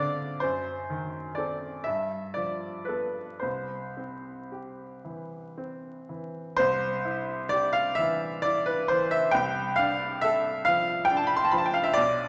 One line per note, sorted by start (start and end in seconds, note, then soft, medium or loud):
0.00 0.38 F2 medium
0.00 0.45 D3 soft
0.00 0.45 C4 soft
0.00 0.46 A4 soft
0.00 0.41 D5 medium
0.00 0.45 E5 medium
0.00 0.45 F5 medium
0.40 1.82 F#2 medium
0.40 1.36 C5 medium
0.90 1.67 D#3 soft
1.35 1.82 C4 soft
1.35 1.82 A4 soft
1.35 1.85 D5 medium
1.84 3.38 G2 soft
1.84 2.35 E5 medium
2.34 3.20 F3 soft
2.34 2.87 D5 medium
2.85 3.38 B3 soft
2.85 3.38 A4 soft
2.85 3.40 B4 medium
3.40 6.54 C2 soft
3.40 5.03 C5 medium
3.97 4.83 C4 soft
4.52 5.36 G4 soft
5.05 5.88 E3 soft
5.58 6.39 C4 soft
6.09 6.58 E3 soft
6.57 9.31 C2 medium
6.57 7.50 C5 loud
7.05 7.79 E4 medium
7.49 8.27 G4 medium
7.49 7.73 D5 loud
7.73 7.97 F5 loud
7.95 8.72 E3 medium
7.95 8.43 E5 loud
8.42 9.17 E4 medium
8.42 8.66 D5 loud
8.66 8.89 B4 medium
8.88 9.35 E3 medium
8.88 9.11 C5 loud
9.11 9.34 E5 loud
9.31 11.93 C2 medium
9.31 9.77 G5 loud
9.76 10.50 D4 medium
9.76 10.22 F5 loud
10.21 10.94 A4 medium
10.21 10.66 E5 loud
10.65 11.36 F3 medium
10.65 11.05 F5 loud
11.05 11.19 G5 loud
11.11 11.79 D4 medium
11.17 11.29 A5 medium
11.27 11.37 B5 loud
11.36 11.45 C6 loud
11.44 11.52 A5 medium
11.51 11.97 F3 medium
11.51 11.59 B5 medium
11.58 11.67 A5 medium
11.66 11.76 G5 medium
11.74 11.85 F5 medium
11.84 11.95 E5 medium
11.94 12.28 B1 medium
11.94 12.28 D5 loud